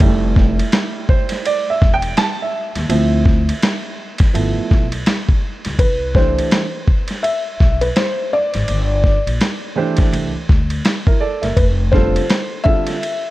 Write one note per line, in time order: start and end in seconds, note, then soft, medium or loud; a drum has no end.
0.00 0.60 F1 loud
0.00 2.86 G3 medium
0.00 2.86 A3 medium
0.00 2.86 E4 medium
0.00 kick loud
0.00 ride medium
0.36 kick medium
0.36 snare soft
0.59 ride medium
0.72 snare loud
0.72 hi-hat pedal medium
0.72 ride medium
1.09 1.43 C5 medium
1.09 kick medium
1.29 snare soft
1.29 ride medium
1.45 1.71 D5 medium
1.45 ride medium
1.70 1.95 E5 medium
1.82 2.11 E1 medium
1.82 kick medium
1.82 snare soft
1.94 2.18 G5 loud
2.02 ride medium
2.17 2.40 A5 loud
2.17 snare loud
2.17 hi-hat pedal medium
2.17 ride medium
2.42 4.19 E5 medium
2.75 2.87 D#2 medium
2.75 snare soft
2.75 ride medium
2.89 3.49 D2 loud
2.89 3.41 F3 medium
2.89 3.41 C4 medium
2.89 3.41 E4 medium
2.89 ride medium
3.25 kick loud
3.25 snare soft
3.49 ride medium
3.62 snare loud
3.62 hi-hat pedal medium
3.62 ride medium
4.18 kick loud
4.18 snare soft
4.18 ride medium
4.34 4.53 G1 loud
4.34 4.85 F3 soft
4.34 4.85 A3 soft
4.34 4.85 B3 soft
4.34 4.86 E4 medium
4.34 ride medium
4.57 muted upright bass stroke medium
4.71 5.01 B1 loud
4.71 kick medium
4.71 snare soft
4.92 ride medium
5.06 snare loud
5.06 hi-hat pedal medium
5.06 ride medium
5.29 kick medium
5.65 5.77 C#2 medium
5.65 snare soft
5.65 ride medium
5.79 6.38 C2 loud
5.79 6.16 B4 medium
5.79 kick loud
5.79 ride medium
6.14 6.60 E3 medium
6.14 6.60 A3 medium
6.14 6.60 D4 medium
6.14 6.61 G4 medium
6.14 7.20 C5 medium
6.14 6.61 C5 medium
6.14 kick medium
6.14 snare soft
6.38 ride medium
6.51 snare loud
6.51 hi-hat pedal soft
6.51 ride medium
6.88 kick medium
7.08 snare soft
7.08 ride medium
7.23 7.77 E5 medium
7.23 ride medium
7.60 7.90 B1 medium
7.60 kick medium
7.60 snare soft
7.81 7.86 B4 medium
7.81 ride soft
7.96 8.30 C5 medium
7.96 snare loud
7.96 hi-hat pedal medium
7.96 ride medium
8.33 9.37 D5 loud
8.54 8.66 G#1 medium
8.54 snare soft
8.54 ride medium
8.68 9.16 G1 medium
8.68 ride medium
9.04 kick medium
9.04 snare soft
9.26 9.38 A#1 medium
9.26 ride medium
9.41 snare medium
9.41 hi-hat pedal medium
9.41 ride medium
9.76 10.30 E3 medium
9.76 10.30 A3 medium
9.76 10.30 D4 medium
9.76 10.31 G4 medium
9.76 10.31 C5 medium
9.97 kick medium
9.97 snare soft
9.97 ride medium
10.12 10.30 C2 loud
10.12 ride medium
10.34 muted upright bass stroke soft
10.49 10.79 D2 medium
10.49 kick medium
10.49 snare soft
10.70 ride soft
10.85 snare loud
10.85 hi-hat pedal medium
10.85 ride medium
11.07 11.21 E4 soft
11.07 11.20 A#4 medium
11.07 kick medium
11.20 11.42 A4 medium
11.20 11.42 D5 medium
11.42 11.54 F#1 medium
11.42 11.77 A#4 medium
11.42 11.77 E5 medium
11.42 snare soft
11.42 ride soft
11.56 12.16 F1 loud
11.56 11.65 B4 medium
11.56 kick loud
11.56 ride medium
11.92 12.21 D3 medium
11.92 12.21 G3 medium
11.92 12.21 C4 medium
11.92 12.22 F4 medium
11.92 12.22 A4 medium
11.92 12.67 C5 medium
11.92 kick medium
11.92 snare soft
12.16 ride medium
12.30 snare medium
12.30 hi-hat pedal soft
12.30 ride medium
12.64 12.93 D3 medium
12.64 12.93 G3 medium
12.64 12.93 C4 medium
12.64 12.94 F4 medium
12.64 12.94 A4 medium
12.64 13.30 E5 loud
12.64 kick medium
12.87 snare soft
12.87 ride medium
13.03 ride medium